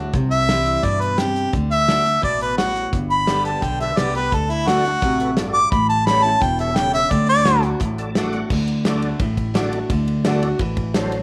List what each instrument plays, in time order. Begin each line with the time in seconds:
Already playing: steel-string acoustic guitar A2 F#4
0.00 steel-string acoustic guitar D4
0.13 upright bass C2, steel-string acoustic guitar C3, kick, closed hi-hat
0.31 harmonica E5, closed hi-hat
0.49 steel-string acoustic guitar E3 G3 C4 E4, snare, closed hi-hat
0.66 closed hi-hat
0.83 upright bass G2, steel-string acoustic guitar B2, harmonica D5, kick, closed hi-hat
1.01 harmonica B4, closed hi-hat
1.18 steel-string acoustic guitar C3, harmonica G4, snare, closed hi-hat
1.36 closed hi-hat
1.53 upright bass D2, steel-string acoustic guitar D3, kick, closed hi-hat
1.71 harmonica E5, closed hi-hat
1.88 steel-string acoustic guitar D3 A3 D4 F#4, snare, closed hi-hat
2.04 steel-string acoustic guitar D4 F#4, closed hi-hat
2.22 upright bass A1, steel-string acoustic guitar B2, harmonica D5, kick, closed hi-hat
2.41 harmonica B4, closed hi-hat
2.58 steel-string acoustic guitar A2, harmonica F#4, snare, closed hi-hat
2.76 closed hi-hat
2.93 upright bass G1, steel-string acoustic guitar G2, kick, closed hi-hat
3.10 harmonica B5, closed hi-hat
3.26 steel-string acoustic guitar D3 G3 B3 G4, tonewheel organ G4 A4 B4, snare, closed hi-hat
3.45 harmonica A5, closed hi-hat
3.62 upright bass B1, steel-string acoustic guitar D3, harmonica G5, kick, closed hi-hat
3.80 tonewheel organ G4 A4 B4, harmonica E5, closed hi-hat
3.96 upright bass C2, steel-string acoustic guitar D3 G3 B3 G4, tonewheel organ G4 A4 B4, harmonica D5, snare, closed hi-hat
4.15 steel-string acoustic guitar B3 G4, harmonica B4, closed hi-hat
4.32 upright bass D2, steel-string acoustic guitar D3, harmonica A4, kick, closed hi-hat
4.50 harmonica E4, closed hi-hat
4.66 steel-string acoustic guitar D3 A3 D4 F#4, tonewheel organ F#4 A4 D5, harmonica F#4, snare, closed hi-hat
4.85 steel-string acoustic guitar D4 F#4, closed hi-hat
5.02 upright bass A1, steel-string acoustic guitar C3, kick, closed hi-hat
5.19 tonewheel organ F#4 A4 B4, closed hi-hat
5.37 steel-string acoustic guitar G2, tonewheel organ F#4 A4 D5, snare, closed hi-hat
5.53 harmonica D6, closed hi-hat
5.71 upright bass A1, steel-string acoustic guitar A2, harmonica B5, kick, closed hi-hat
5.89 harmonica A5, closed hi-hat
6.06 steel-string acoustic guitar E3 G3 C#4 E4, tonewheel organ G4 A4 C#5, harmonica B5, snare, closed hi-hat
6.23 steel-string acoustic guitar C#4 E4, harmonica A5, closed hi-hat
6.41 upright bass E1, steel-string acoustic guitar B2, harmonica G5, kick, closed hi-hat
6.59 tonewheel organ G4 A4 C#5, harmonica E5, closed hi-hat
6.76 steel-string acoustic guitar C#3, tonewheel organ G4 A4 C#5, harmonica G5, snare, closed hi-hat
6.93 harmonica E5, closed hi-hat
7.11 upright bass D2, steel-string acoustic guitar D3, harmonica D5, kick, closed hi-hat
7.28 harmonica D5, closed hi-hat
7.45 steel-string acoustic guitar D3 A3 D4 F#4, tonewheel organ F#4 A4 D5, snare, closed hi-hat
7.62 steel-string acoustic guitar D4 F#4, closed hi-hat
7.80 upright bass A1, steel-string acoustic guitar A2, kick, closed hi-hat
7.98 tonewheel organ F#4 A4 D5 A5, closed hi-hat
8.15 steel-string acoustic guitar D3 A3 D4 F#4, tonewheel organ F#4 A4 D5 F#5, snare, closed hi-hat
8.33 steel-string acoustic guitar D4 F#4, closed hi-hat
8.50 upright bass D2, steel-string acoustic guitar D3, kick, crash
8.68 ride
8.85 steel-string acoustic guitar D3 A3 D4 F#4, tonewheel organ D4 F#4 A4 D5, snare, ride
9.02 ride
9.19 upright bass A1, steel-string acoustic guitar A2, kick, ride
9.37 kick, ride
9.54 steel-string acoustic guitar D3 A3 D4 F#4, tonewheel organ D4 F#4 A4 D5, snare, ride
9.72 steel-string acoustic guitar D4 F#4, ride
9.90 upright bass D2, steel-string acoustic guitar D3, kick, ride
10.08 ride
10.25 steel-string acoustic guitar D3 A3 D4 F#4, tonewheel organ D4 F#4 A4 D5, snare, ride
10.43 steel-string acoustic guitar D4 F#4, ride
10.59 upright bass A1, steel-string acoustic guitar E3, kick, ride
10.77 kick, ride
10.94 steel-string acoustic guitar F#3, tonewheel organ D4 F#4 A4 C5, snare, ride
11.12 ride